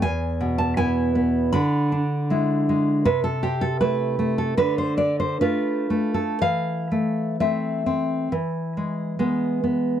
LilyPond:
\new Staff \with { instrumentName = "Nylon-string guitar" } { \time 4/4 \key a \minor \tempo 4 = 76 << { gis''8. a''16 gis''4 b''4. r8 | b'16 a'16 g'16 a'16 b'8. a'16 b'16 c''16 d''16 c''16 b'8. a'16 | f''4 e''2~ e''8 r8 | } \\ { e,8 b,8 <b e'>8 b8 d8 d'8 <gis e'>8 gis8 | c8 c'8 <a e'>8 a8 d8 d'8 <a f'>8 a8 | e8 a8 <a c'>8 c'8 e8 gis8 <gis b>8 b8 | } >> }